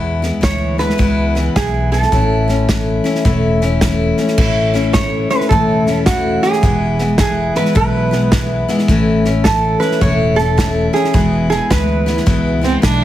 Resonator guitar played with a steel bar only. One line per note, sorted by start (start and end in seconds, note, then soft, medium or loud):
0.44 0.79 C#5 medium
0.79 1.58 B4 loud
1.56 1.92 G#4 medium
1.92 3.77 A4 medium
4.93 5.30 C#5 medium
5.30 5.49 B4 medium
5.49 6.02 A4 medium
6.06 6.43 F#4 medium
6.43 7.16 G#4 medium
7.20 7.54 G#4 medium
7.56 7.75 B4 medium
7.77 8.65 B4 medium
9.44 9.78 A4 medium
9.80 10.01 B4 medium
10.02 10.35 C#5 loud
10.36 10.93 A4 medium
10.94 11.46 G#4 medium
11.50 11.71 G#4 medium
11.71 12.79 B4 medium